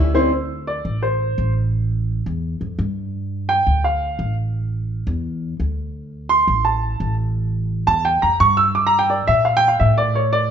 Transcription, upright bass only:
Already playing: D2
0.85 A1
1.38 A1
2.26 E2
2.61 F2
2.79 G2
3.67 D2
4.19 A1
5.07 E2
5.60 D2
6.47 A1
7.00 A1
7.88 E2
8.23 F2
8.40 G2
9.28 A#2
9.81 A2

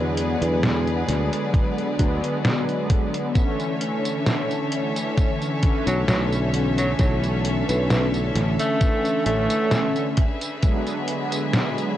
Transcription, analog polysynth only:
Already playing: D3 F#3 G#3 B3
1.98 D3 F#3 G#3 B3
3.34 D3 E3 A3 C#4
5.61 D3 E3 A3 C#4
6.98 D3 E3 A3 C#4
9.26 D3 E3 A3 C#4
10.62 D3 F#3 G#3 B3

